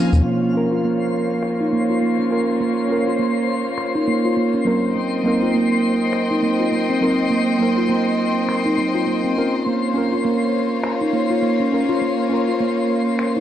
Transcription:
0.00 0.12 F3 medium
0.00 0.21 F#3 medium
0.00 0.51 A#3 medium
0.00 0.52 C#4 medium
0.00 0.52 F4 medium
0.00 0.21 C5 medium
0.00 0.21 D#5 medium
0.00 0.26 F5 medium
0.00 0.23 G#5 medium
0.13 0.21 D#2 loud
0.13 darbuka dum medium
0.13 shaker soft
0.25 0.70 A#3 medium
0.25 4.92 A#3 medium
0.25 4.92 F4 medium
0.25 13.40 C5 medium
0.25 4.92 C#5 medium
0.25 13.40 C6 medium
0.53 2.27 C#4 medium
0.53 2.28 F4 medium
0.53 2.29 A#4 medium
0.72 0.83 F4 medium
0.84 1.00 A#3 medium
1.43 finger snap medium
1.61 1.72 D#4 medium
1.73 1.89 A#3 medium
1.90 2.01 F4 medium
2.02 2.18 A#3 medium
2.19 2.30 C#4 medium
2.30 2.86 C#4 medium
2.30 2.87 F4 medium
2.30 2.87 A#4 medium
2.60 3.05 A#3 medium
2.88 4.62 C#4 medium
2.88 4.63 F4 medium
2.92 4.64 A#4 medium
3.07 3.19 F4 medium
3.19 3.36 A#3 medium
3.78 finger snap medium
3.95 4.07 D#4 medium
4.08 4.24 A#3 medium
4.25 4.36 F4 medium
4.37 4.53 A#3 medium
4.54 4.65 C#4 medium
4.65 5.21 F#3 medium
4.65 5.22 A#3 medium
4.65 5.22 C4 medium
4.65 5.22 D#4 medium
4.65 5.22 A#4 medium
4.95 5.40 A#3 medium
4.95 9.62 C4 medium
4.95 9.62 D#5 medium
4.95 9.62 G5 medium
5.23 6.98 F#3 medium
5.23 6.98 A#3 medium
5.23 6.99 C4 medium
5.23 6.99 D#4 medium
5.27 7.00 A#4 medium
5.42 5.54 F4 medium
5.54 5.71 A#3 medium
6.13 finger snap medium
6.31 6.42 D#4 medium
6.43 6.59 A#3 medium
6.60 6.71 F4 medium
6.72 6.88 A#3 medium
6.89 7.01 C4 medium
7.01 7.57 F#3 medium
7.01 7.57 A#3 medium
7.01 7.58 C4 medium
7.01 7.58 D#4 medium
7.01 7.58 A#4 medium
7.30 7.76 A#3 medium
7.58 9.33 F#3 medium
7.58 9.33 A#3 medium
7.58 9.34 C4 medium
7.58 9.34 D#4 medium
7.62 9.35 A#4 medium
7.78 7.89 F4 medium
7.89 8.06 A#3 medium
8.49 finger snap medium
8.66 8.77 D#4 medium
8.77 8.94 A#3 medium
8.95 9.06 F4 medium
9.07 9.24 A#3 medium
9.24 9.36 C4 medium
9.36 9.92 C#4 medium
9.36 9.93 F4 medium
9.36 9.93 A#4 medium
9.66 10.11 A#3 medium
9.66 13.40 A#3 medium
9.66 13.40 F4 medium
9.66 13.40 C#5 medium
9.94 11.68 C#4 medium
9.94 11.69 F4 medium
9.94 11.70 A#4 medium
10.13 10.24 F4 medium
10.25 10.41 A#3 medium
10.84 finger snap medium
11.01 11.13 D#4 medium
11.13 11.30 A#3 medium
11.30 11.42 F4 medium
11.42 11.59 A#3 medium
11.60 11.71 C#4 medium
11.72 12.28 C#4 medium
11.72 12.28 F4 medium
11.72 12.29 A#4 medium
11.89 12.01 F4 medium
12.02 12.46 A#3 medium
12.29 13.40 C#4 medium
12.29 13.40 F4 medium
12.29 13.40 A#4 medium
12.48 12.60 F4 medium
12.61 12.77 A#3 medium
13.19 finger snap medium
13.36 13.40 D#4 medium

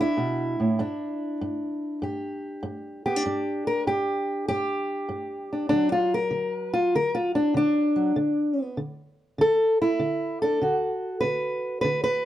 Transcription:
0.00 0.13 C3 medium
0.00 0.18 D4 medium
0.00 2.03 E4 medium
0.17 0.59 B2 medium
0.60 0.80 A2 medium
0.79 1.37 G2 medium
0.79 3.05 D4 medium
1.41 1.99 G2 medium
2.02 2.60 G2 medium
2.02 3.04 G4 soft
2.63 3.21 G2 medium
3.06 3.16 B3 soft
3.06 3.67 G4 medium
3.16 3.24 D4 soft
3.26 3.83 G2 medium
3.26 5.52 D4 soft
3.67 3.87 A#4 medium
3.87 4.44 G2 medium
3.87 4.47 G4 medium
4.48 5.06 G2 medium
4.48 5.71 G4 loud
5.09 5.67 G2 medium
5.53 5.69 D4 soft
5.69 6.28 D3 medium
5.69 7.95 F#3 soft
5.69 5.91 D4 medium
5.92 6.12 F4 medium
6.14 6.74 A#4 medium
6.31 6.89 D3 medium
6.74 6.94 F4 medium
6.95 7.52 D3 medium
6.95 7.15 A#4 medium
7.15 7.35 F4 medium
7.35 7.55 D4 medium
7.54 8.12 D3 medium
7.54 8.78 D4 loud
7.96 8.16 F#3 soft
8.16 8.73 D3 medium
8.77 9.35 D3 medium
9.38 9.96 D3 medium
9.38 9.81 A4 loud
9.82 10.41 E4 medium
9.99 10.57 D3 medium
10.42 10.62 D4 soft
10.42 11.20 A4 medium
10.62 11.19 D3 medium
10.62 12.25 F#4 soft
11.21 11.80 D3 medium
11.21 11.80 B4 medium
11.81 12.25 D3 medium
11.81 12.02 B4 medium
12.04 12.25 B4 medium

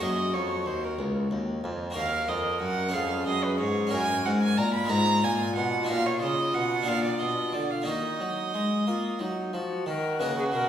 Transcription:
0.00 0.36 F#2 medium
0.00 0.31 F#2 medium
0.00 0.31 A#3 soft
0.00 1.91 F#4 soft
0.00 1.64 F#4 medium
0.00 1.92 A#4 soft
0.00 0.35 D#5 medium
0.33 0.63 F2 soft
0.33 0.68 F2 medium
0.33 0.68 C#5 medium
0.66 0.95 D#2 soft
0.66 0.97 D#2 medium
0.66 0.86 C5 medium
0.84 0.99 A#4 medium
0.98 1.30 C#2 medium
0.98 1.28 C#2 medium
1.30 1.63 D#2 medium
1.30 1.60 D#2 soft
1.63 1.95 F2 medium
1.63 1.93 F2 medium
1.90 2.25 A#3 soft
1.90 2.89 F#4 medium
1.90 2.90 A#4 medium
1.95 2.28 D#2 medium
1.95 2.25 D#2 medium
1.95 2.90 A#4 medium
1.95 2.30 F5 medium
2.28 2.58 F2 medium
2.28 2.60 F2 medium
2.28 2.60 D#5 medium
2.60 2.90 F#2 soft
2.60 2.95 F#2 medium
2.60 2.95 F#5 medium
2.88 3.86 C#4 medium
2.88 3.87 G#4 medium
2.93 3.23 F2 medium
2.93 3.26 F2 medium
2.93 3.93 G#4 medium
2.93 3.26 F5 medium
3.26 3.56 F#2 medium
3.26 3.62 F#2 medium
3.26 3.46 D#5 medium
3.44 3.59 B4 medium
3.59 3.88 G#2 medium
3.59 3.92 G#2 medium
3.59 3.91 C#5 medium
3.87 4.21 C#4 medium
3.87 4.86 F#4 soft
3.87 4.86 A#4 medium
3.91 4.21 F#2 medium
3.91 4.25 F#2 medium
3.91 4.92 A#4 medium
3.91 4.27 G#5 loud
4.25 4.54 G#2 medium
4.25 4.57 G#2 medium
4.25 4.41 F#5 medium
4.43 4.59 G#5 medium
4.57 4.87 A#2 medium
4.57 4.92 A#2 medium
4.57 4.73 A#5 medium
4.74 4.91 B5 medium
4.84 5.19 G#3 medium
4.84 5.20 B3 medium
4.84 5.21 D#4 medium
4.89 5.20 G#2 medium
4.89 5.23 G#2 medium
4.89 7.90 F4 medium
4.89 5.85 G#4 medium
4.89 5.25 A#5 loud
5.23 5.52 A#2 medium
5.23 5.59 A#2 medium
5.23 5.55 G#5 medium
5.55 5.85 B2 medium
5.55 5.89 B2 medium
5.55 5.88 F#5 medium
5.83 6.81 A#3 medium
5.83 6.82 D#4 soft
5.83 6.83 F#4 medium
5.88 6.18 A#2 medium
5.88 6.22 A#2 medium
5.88 6.07 F5 medium
6.06 6.21 C#5 medium
6.20 6.50 C#3 medium
6.20 6.54 C#3 medium
6.20 6.55 D#5 medium
6.53 6.83 B2 medium
6.53 6.87 B2 medium
6.53 6.89 F#5 medium
6.82 7.81 A#3 medium
6.82 7.82 D4 soft
6.82 7.83 G#4 medium
6.87 7.17 A#2 medium
6.87 7.20 A#2 medium
6.87 7.04 F5 medium
7.04 7.21 D5 medium
7.19 7.50 B2 medium
7.19 7.54 B2 medium
7.19 7.55 D#5 medium
7.53 7.83 D3 soft
7.53 7.87 D3 medium
7.53 7.72 D5 medium
7.71 7.86 F5 medium
7.82 8.49 A#3 soft
7.82 9.82 D#4 soft
7.82 9.82 F#4 soft
7.86 8.17 D#3 medium
7.86 8.20 D#3 medium
7.86 8.62 D#4 medium
7.86 9.51 D#5 medium
8.20 8.50 F#3 soft
8.20 8.53 F#3 medium
8.54 8.84 G#3 soft
8.54 8.86 G#3 medium
8.87 9.17 A#3 medium
8.87 9.20 A#3 medium
8.87 9.22 F4 medium
9.19 9.50 F#3 soft
9.19 9.53 F#3 medium
9.19 9.56 D#4 medium
9.53 9.84 F3 soft
9.53 9.86 F3 medium
9.53 9.88 F#4 medium
9.86 10.22 D#3 medium
9.86 10.16 D#3 medium
9.86 10.69 F#4 medium
9.86 10.21 A#4 loud
10.19 10.50 C#3 medium
10.19 10.55 C#3 medium
10.19 10.44 A#3 soft
10.19 10.69 D#4 soft
10.19 10.69 F#4 medium
10.19 10.36 B4 loud
10.38 10.44 G#4 medium
10.52 10.69 B2 medium
10.52 10.69 A#4 medium

